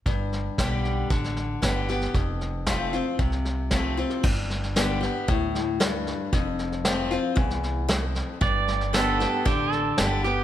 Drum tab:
CC |----------------|----------------|x---------------|----------------|
HH |----p-------p---|----p-------p---|----p-------p---|----p-------p---|
SD |o-o-o-o-ooo-o-oo|o-o-o-o-ooo-o-oo|o-ooo-o-o-o-o-o-|o-ooo-o-ooo-o-o-|
BD |o---o---o---o---|o---o---o---o---|o-------o-------|o-------o-------|

CC |----------------|
HH |----p-------p---|
SD |o-ooo-o-o-o-o-o-|
BD |o-------o-------|